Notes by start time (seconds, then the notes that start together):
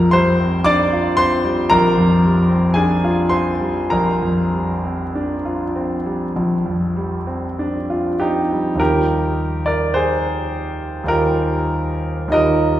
Already playing: A#1 F2 A#4 A#5
0.11 G3 C5 C6
0.41 C4
0.64 D4 D5 D6
0.93 F4
1.17 C4 C5 C6
1.44 G3
1.70 A#1 A#4 A#5
1.98 F2
2.25 G3
2.50 C4
2.74 D4 G#4 G#5
3.04 F4
3.29 C4 C5 C6
3.60 G3
3.90 A#1 A#4 A#5
4.23 F2
4.53 G3
4.85 C4
5.15 D4
5.45 F4
5.76 C4
6.06 G3
6.36 A#1
6.66 F2
6.97 G3
7.27 C4
7.59 D4
7.90 F4
8.20 C4 D#4 G4
8.52 G3
8.75 D#2 G3 D#4
8.79 F4 G4 A#4
9.66 A#4 D5
9.94 G#4 C5
11.04 D#2 G3 D#4 F4
11.08 G4 A#4
12.28 D#2 G3 D#4 F4 D#5
12.34 A#4